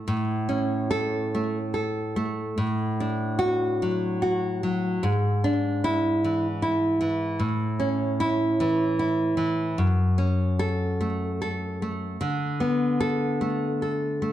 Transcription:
0.08 A2
0.49 C#4
0.91 A4
1.35 A3
1.74 A4
2.16 A3
2.58 A2
3.00 D4
3.39 F#4
3.82 F#3
4.22 F#4
4.63 F#3
5.03 G#2
5.44 D4
5.84 E4
6.24 E3
6.62 E4
7.01 E3
7.39 A2
7.80 C#4
8.20 E4
8.60 E3
8.99 E4
9.37 E3
9.78 F#2
10.18 C#4
10.59 A4
11.01 A3
11.42 A4
11.82 A3
12.21 D3
12.60 B3
13.00 A4
13.41 A3
13.82 A4
14.22 A3

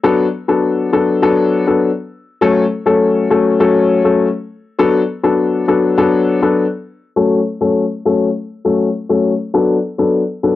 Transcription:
0.04 F#3 B3 D4 A4
0.48 F#3 B3 D4 A4
0.93 F#3 B3 D4 A4
1.22 F#3 B3 D4 A4
1.67 F#3 B3 D4 A4
2.41 F#3 A3 C#4 A4
2.86 F#3 A3 C#4 A4
3.30 F#3 A3 C#4 A4
3.60 F#3 A3 C#4 A4
4.04 F#3 A3 C#4 A4
4.79 F#3 B3 D4 A4
5.23 F#3 B3 D4 A4
5.68 F#3 B3 D4 A4
5.97 F#3 B3 D4 A4
6.42 F#3 B3 D4 A4
7.16 F#3 A3 C#4 A4
7.61 F#3 A3 C#4 A4
8.05 F#3 A3 C#4 A4
8.65 F#3 A3 C#4 A4
9.09 F#3 A3 C#4 A4
9.54 F#3 B3 D4 A4
9.98 F#3 B3 D4 A4
10.43 F#3 B3 D4 A4

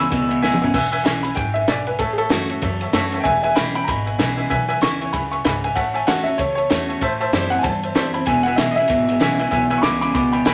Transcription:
0.00 E2 C#3 C#4 E4 B5 E6
0.10 C#2 E2 B2 B4 E5 G#5, kick, ride
0.28 E2 B2 B4 E5 G#5, ride
0.42 C#2 E2 C#3 E3 G#3 C#4 E4 B4 E5 G#5, snare
0.54 mid tom
0.62 E2 C#3 C#4 E4 B4 E5 G#5, floor tom
0.74 E1 E2 B4 E5 G#5, kick, crash
0.92 B4 E5 G#5, ride
1.04 B1 E3 G#3 C#4 E4 B4 E5 G#5, snare, ride
1.23 C#4 E4 B4 E5 G#5 B5, ride
1.35 G#1 F#2 B4 E5 G5 G#5, kick, ride
1.54 B4 E5 G#5, ride
1.68 B1 G#2 B4 D5 E5 G#5, snare, ride
1.87 B4 E5 G#5, ride
1.99 A1 A2 A4 C#5 E5 A5, kick, ride
2.13 G#4
2.18 A4 C#5 E5 A5, ride
2.29 F#2 E3 A3 C#4 F#4, snare, ride
2.49 C#4 F#4 C#5 E5 A5, ride
2.62 E2 F#2 C#5 E5 A5, kick, ride
2.81 C#5 E5 A5, ride
2.93 F#2 E3 A3 C#4 F#4 C#5 E5 A5, snare, ride
3.12 C#5 E5 A5, ride
3.20 E5 G5 G#5
3.25 E1 E2 B4 E5 G#5, kick, ride
3.43 B4 E5 G#5, ride
3.55 B1 E3 G#3 C#4 E4 B4 E5 G5 B5, snare, ride
3.75 C#4 E4 B4 E5 G5 G#5 B5, ride
3.84 G#1 B4 E5 G#5 A#5, kick, ride
3.89 B2 B5
4.06 B4 E5 G#5, ride
4.19 B1 E3 G#3 C#4 E4 B4 E5 G#5, snare, ride
4.37 B4 E5 G#5, ride
4.50 B1 E2 B4 E5 G#5, kick, ride
4.69 B4 E5 G#5, ride
4.81 C#2 E3 G#3 C#4 E4 E5 C#6, snare, ride
5.01 C#4 E4 B4 E5 G#5, ride
5.13 C#2 F#2 B4 E5 G#5 B5, kick, ride
5.31 B4 E5 G#5 C#6, ride
5.44 C#2 G#2 B4 E5 G#5 B5, kick, snare, ride
5.64 B4 E5 G#5, ride
5.75 A1 A2 C#5 E5 F#5 A5, kick, ride
5.94 C#5 E5 G#5 A5, ride
6.07 E2 E3 A3 C#4 F#4 C#5 E5 F#5 A5, snare, ride
6.23 C#4 F#4 C#5 E5 A5, ride
6.38 C#2 E2 C#5 E5 A5, kick, ride
6.55 C#5 E5 A5, ride
6.70 E2 E3 A3 C#4 F#4 C#5 E5 A5, snare, ride
6.89 C#5 E5 A5, ride
7.01 A1 A2 C5 E5 A5, kick, ride
7.20 C5 E5 A5, ride
7.32 F#2 E3 G3 C4 E4 C5 E5, snare, ride
7.50 C4 E4 C5 E5 F#5 A5, ride
7.58 G#5
7.63 E2 G2 C5 E5 A5, kick, ride
7.83 C5 E5 A5, ride
7.95 E3 G3 C4 E4 C5 E5 A5, snare, ride
8.13 C4 E4 C5 E5 A5 B5, ride
8.26 E1 E2 B2 B4 E5 G#5, kick, ride
8.43 E2 B2 E5 F#5 G#5, ride
8.47 B4
8.56 B1 E2 C#3 E3 G#3 C#4 E4 B4 E5 G#5, snare, ride
8.71 E4 D#5
8.76 E2 C#3 C#4 B4 E5 G#5, ride
8.88 G#1 E2 B2 B4 E5 G#5, kick, snare, ride
9.08 E2 B2 B4 E5 G#5, ride
9.20 B1 E2 C#3 E3 G#3 C#4 E4 B4 E5 G#5, snare, ride
9.39 E2 C#3 C#4 E4 B4 E5 G#5, ride
9.51 B1 E2 B2 B4 E5 G#5, kick, ride
9.70 E2 B2 B4 E5 G#5, ride
9.78 B5 C#6
9.83 C#2 E2 C#3 E3 G#3 C#4 E4 B4 D6, snare, ride
10.01 E2 C#3 B4 E5 G#5 B5 D6, ride
10.14 C#2 E2 B2 B4 E5 G#5 B5 D6, kick, ride
10.32 E2 B2 B4 E5 G5 G#5 B5, ride
10.45 C#2 E2 C#3 E3 G#3 C#4 E4 B4 E5 G5 G#5 B5, kick, snare, ride

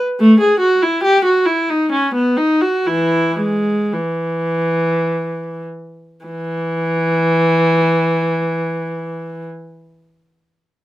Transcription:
0.20 A3
0.40 G#4
0.60 F#4
0.83 E4
1.04 G4
1.25 F#4
1.46 E4
1.69 D#4
1.92 C#4
2.14 B3
2.37 D#4
2.61 F#4
2.87 E3 E4
3.39 G#3
3.93 E3
6.26 E3

